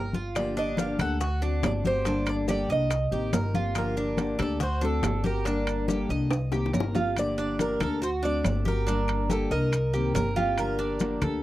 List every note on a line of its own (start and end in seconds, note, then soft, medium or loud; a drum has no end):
0.00 0.93 G1 medium
0.00 0.13 A#4 medium
0.13 0.56 F4 medium
0.13 high bongo soft
0.13 high conga medium
0.13 maracas soft
0.35 0.76 D3 medium
0.35 0.77 F3 medium
0.35 0.77 A#3 medium
0.35 0.78 D4 medium
0.35 0.78 G4 medium
0.35 0.58 D5 loud
0.35 high bongo medium
0.35 high conga soft
0.35 high timbale medium
0.35 claves medium
0.35 maracas medium
0.57 0.98 D4 medium
0.57 0.79 D#5 loud
0.57 high bongo soft
0.57 high conga soft
0.57 maracas soft
0.77 0.98 D3 medium
0.77 0.99 F3 medium
0.77 0.99 A#3 medium
0.77 0.98 D4 medium
0.77 0.97 G4 medium
0.77 0.98 F5 loud
0.77 high bongo medium
0.77 high conga loud
0.77 high timbale medium
0.77 low timbale medium
0.77 maracas medium
0.98 1.59 D2 loud
0.98 1.20 A#3 soft
0.98 1.20 D4 soft
0.98 1.19 G4 medium
0.98 1.20 A4 medium
0.98 1.60 F#5 loud
0.98 high conga medium
0.98 low conga medium
0.98 high timbale loud
0.98 claves medium
0.98 maracas soft
1.20 1.41 F#4 medium
1.20 muted steel-string acoustic guitar stroke medium
1.20 high bongo medium
1.20 high conga soft
1.20 maracas medium
1.42 1.62 A3 medium
1.42 1.62 C4 medium
1.42 1.83 D4 medium
1.42 1.62 F#4 medium
1.42 high bongo soft
1.42 high conga soft
1.42 maracas soft
1.62 2.63 G1 medium
1.62 1.83 D3 medium
1.62 1.83 A3 medium
1.62 1.84 C4 medium
1.62 1.82 F#4 medium
1.62 1.71 D5 loud
1.62 high bongo medium
1.62 low bongo medium
1.62 high conga medium
1.62 high timbale medium
1.62 low timbale medium
1.62 claves medium
1.62 maracas medium
1.84 2.05 A3 soft
1.84 2.05 C4 medium
1.84 2.04 F#4 medium
1.84 2.06 G4 medium
1.84 2.29 C5 loud
1.84 high bongo soft
1.84 high conga medium
1.84 maracas soft
2.05 2.46 D3 medium
2.05 2.46 G3 medium
2.05 2.47 A#3 medium
2.05 2.47 D4 medium
2.05 2.48 A4 medium
2.05 high bongo medium
2.05 high conga soft
2.05 high timbale medium
2.05 maracas medium
2.26 2.34 D5 medium
2.26 high bongo soft
2.26 high conga soft
2.26 high timbale loud
2.26 claves medium
2.26 maracas soft
2.47 2.68 D3 medium
2.47 2.68 G3 medium
2.47 2.69 A#3 medium
2.47 2.69 D4 medium
2.47 2.69 G4 medium
2.47 2.68 A4 medium
2.47 2.69 D5 loud
2.47 high bongo medium
2.47 high conga loud
2.47 low timbale medium
2.47 maracas medium
2.69 3.09 C2 loud
2.69 2.90 A#3 soft
2.69 2.90 D4 soft
2.69 2.90 A4 soft
2.69 3.11 D#5 medium
2.69 3.52 D#5 loud
2.69 high conga soft
2.69 maracas soft
2.90 muted steel-string acoustic guitar stroke medium
2.90 high bongo medium
2.90 high conga soft
2.90 high timbale medium
2.90 claves medium
2.90 maracas medium
3.11 3.32 A1 medium
3.11 3.32 D#3 medium
3.11 3.32 A#3 medium
3.11 3.33 C4 medium
3.11 3.32 G4 medium
3.11 3.33 G4 medium
3.11 high conga soft
3.11 maracas soft
3.33 4.33 G1 medium
3.33 3.53 D#3 medium
3.33 3.54 A#3 medium
3.33 3.54 C4 medium
3.33 3.53 G4 medium
3.33 3.54 A#4 medium
3.33 high bongo medium
3.33 low bongo medium
3.33 high conga medium
3.33 high timbale medium
3.33 low timbale medium
3.33 maracas medium
3.54 3.74 A#3 soft
3.54 3.75 C4 soft
3.54 3.96 F4 medium
3.54 3.75 G4 medium
3.54 high bongo soft
3.54 high conga medium
3.54 maracas soft
3.74 4.16 D3 medium
3.74 4.16 F3 medium
3.74 4.16 A#3 medium
3.74 4.17 D4 medium
3.74 4.18 G4 medium
3.74 4.42 A#4 loud
3.74 high bongo medium
3.74 high conga soft
3.74 high timbale medium
3.74 claves medium
3.74 maracas medium
3.97 4.38 D4 medium
3.97 high bongo soft
3.97 high conga soft
3.97 maracas soft
4.17 4.38 D3 medium
4.17 4.38 F3 medium
4.17 4.38 A#3 medium
4.17 4.38 D4 medium
4.17 4.37 G4 medium
4.17 high bongo medium
4.17 high conga loud
4.17 high timbale medium
4.17 low timbale medium
4.17 maracas medium
4.38 4.99 D2 loud
4.38 4.60 A#3 soft
4.38 4.60 D4 soft
4.38 4.59 G4 medium
4.38 4.60 A4 medium
4.38 4.62 D5 medium
4.38 high conga medium
4.38 low conga medium
4.38 high timbale medium
4.38 claves medium
4.38 maracas soft
4.60 4.81 F#4 medium
4.60 4.84 C5 loud
4.60 muted steel-string acoustic guitar stroke medium
4.60 high bongo medium
4.60 high conga soft
4.60 low conga medium
4.60 maracas medium
4.81 5.03 A3 medium
4.81 5.03 C4 medium
4.81 5.23 D4 medium
4.81 5.02 F#4 medium
4.81 5.23 A4 medium
4.81 high bongo soft
4.81 high conga soft
4.81 maracas soft
5.03 6.03 G1 medium
5.03 5.24 D3 medium
5.03 5.24 C4 medium
5.03 5.24 F#4 medium
5.03 high bongo medium
5.03 low bongo medium
5.03 high conga medium
5.03 high timbale medium
5.03 low timbale medium
5.03 claves medium
5.03 maracas medium
5.24 5.46 A3 soft
5.24 5.46 C4 soft
5.24 5.45 F#4 medium
5.24 5.45 G4 medium
5.24 6.07 A#4 medium
5.24 high bongo soft
5.24 high conga medium
5.24 maracas soft
5.45 5.86 D3 medium
5.45 5.87 G3 medium
5.45 5.87 A#3 medium
5.45 5.87 D4 medium
5.45 5.88 D4 medium
5.45 high bongo medium
5.45 high conga soft
5.45 high timbale medium
5.45 maracas medium
5.67 high bongo soft
5.67 high conga soft
5.67 high timbale loud
5.67 claves medium
5.67 maracas soft
5.87 6.08 D3 medium
5.87 6.09 G3 medium
5.87 6.09 A#3 medium
5.87 6.09 D4 medium
5.87 6.09 G4 medium
5.87 6.08 A4 medium
5.87 high bongo medium
5.87 high conga loud
5.87 low timbale medium
5.87 maracas medium
6.09 6.69 C2 loud
6.09 6.30 A#3 soft
6.09 6.30 D4 soft
6.09 6.30 A4 medium
6.09 6.51 D#5 medium
6.09 high conga soft
6.09 maracas soft
6.30 muted steel-string acoustic guitar stroke medium
6.30 high bongo medium
6.30 high conga soft
6.30 high timbale medium
6.30 claves medium
6.30 maracas medium
6.52 6.73 D#3 medium
6.52 6.73 A#3 medium
6.52 6.73 C4 medium
6.52 6.73 G4 medium
6.52 high bongo loud
6.52 high conga soft
6.52 maracas soft
6.66 low bongo medium
6.73 7.74 G1 medium
6.73 6.94 D#3 medium
6.73 6.95 A#3 medium
6.73 6.95 C4 medium
6.73 6.94 G4 medium
6.73 6.95 A#4 medium
6.73 high conga medium
6.73 low timbale medium
6.73 maracas medium
6.80 low bongo loud
6.95 7.16 A#3 soft
6.95 7.16 C4 soft
6.95 7.16 F4 medium
6.95 7.15 G4 medium
6.95 low bongo medium
6.95 high conga loud
6.95 low timbale medium
6.95 maracas soft
7.16 7.58 D3 medium
7.16 7.59 F3 medium
7.16 7.59 A#3 medium
7.16 7.59 D4 medium
7.16 7.59 G4 medium
7.16 7.58 D5 loud
7.16 high conga soft
7.16 high timbale medium
7.16 claves medium
7.16 maracas medium
7.38 7.79 D4 medium
7.38 high conga soft
7.38 maracas soft
7.59 7.79 D3 medium
7.59 7.80 F3 medium
7.59 7.80 A#3 medium
7.59 7.80 D4 medium
7.59 7.80 G4 medium
7.59 7.82 A#4 loud
7.59 high conga loud
7.59 high timbale medium
7.59 low timbale medium
7.59 maracas medium
7.80 8.40 D2 medium
7.80 8.02 A#3 soft
7.80 8.02 D4 soft
7.80 8.01 G4 soft
7.80 8.01 A4 medium
7.80 8.03 A#4 medium
7.80 high conga medium
7.80 low conga medium
7.80 high timbale medium
7.80 claves medium
7.80 maracas soft
8.02 8.22 F#4 medium
8.02 8.09 C5 loud
8.02 muted steel-string acoustic guitar stroke medium
8.02 high conga soft
8.02 maracas medium
8.23 8.45 A3 medium
8.23 8.44 C4 medium
8.23 8.64 D4 medium
8.23 8.44 F#4 medium
8.23 8.64 D5 loud
8.23 high conga soft
8.23 maracas soft
8.44 9.45 G1 medium
8.44 8.65 D3 soft
8.44 8.66 A3 medium
8.44 8.66 C4 medium
8.44 8.65 F#4 medium
8.44 high conga medium
8.44 high timbale medium
8.44 low timbale medium
8.44 claves medium
8.44 maracas medium
8.65 8.88 A3 soft
8.65 8.87 C4 medium
8.65 8.87 F#4 medium
8.65 8.86 G4 medium
8.65 9.32 A#4 loud
8.65 high conga medium
8.65 maracas soft
8.87 9.29 D3 medium
8.87 9.29 G3 medium
8.87 9.29 A#3 medium
8.87 9.28 D4 medium
8.87 9.30 D4 medium
8.87 high conga soft
8.87 high timbale medium
8.87 maracas medium
9.08 high conga soft
9.08 high timbale loud
9.08 claves medium
9.08 maracas soft
9.29 9.50 D3 medium
9.29 9.51 G3 medium
9.29 9.51 A#3 medium
9.29 9.51 D4 medium
9.29 9.50 G4 medium
9.29 9.52 A4 medium
9.29 9.51 A4 medium
9.29 high conga loud
9.29 low timbale medium
9.29 maracas medium
9.51 10.11 C2 loud
9.51 9.72 A#3 soft
9.51 9.72 D4 soft
9.51 9.72 A4 medium
9.51 10.33 A#4 loud
9.51 9.92 D#5 medium
9.51 high conga soft
9.51 maracas soft
9.72 muted steel-string acoustic guitar stroke medium
9.72 high conga soft
9.72 high timbale medium
9.72 claves medium
9.72 maracas medium
9.93 10.15 D#3 medium
9.93 10.15 A#3 medium
9.93 10.15 C4 medium
9.93 10.14 G4 medium
9.93 high conga soft
9.93 maracas soft
10.14 11.15 G1 loud
10.14 10.36 D#3 soft
10.14 10.36 A#3 medium
10.14 10.36 C4 medium
10.14 10.36 G4 medium
10.14 10.35 A#4 medium
10.14 high conga medium
10.14 high timbale medium
10.14 low timbale medium
10.14 maracas medium
10.36 10.57 A#3 soft
10.36 10.58 C4 medium
10.36 10.77 F4 medium
10.36 10.58 G4 medium
10.36 10.57 G4 medium
10.36 high conga medium
10.36 maracas soft
10.58 10.99 D3 medium
10.58 11.00 F3 medium
10.58 11.00 A#3 medium
10.58 11.00 D4 medium
10.58 11.00 G4 medium
10.58 11.43 A#4 loud
10.58 high conga soft
10.58 high timbale medium
10.58 claves medium
10.58 maracas medium
10.79 11.20 D4 medium
10.79 high conga soft
10.79 maracas soft
11.00 11.21 D3 medium
11.00 11.21 F3 medium
11.00 11.21 A#3 medium
11.00 11.21 D4 medium
11.00 11.21 G4 medium
11.00 high conga loud
11.00 high timbale medium
11.00 low timbale medium
11.00 maracas medium
11.21 11.43 D2 loud
11.21 11.43 A#3 soft
11.21 11.43 D4 soft
11.21 11.42 G4 medium
11.21 11.42 A4 medium
11.21 high conga medium
11.21 low conga medium
11.21 high timbale medium
11.21 claves medium
11.21 maracas soft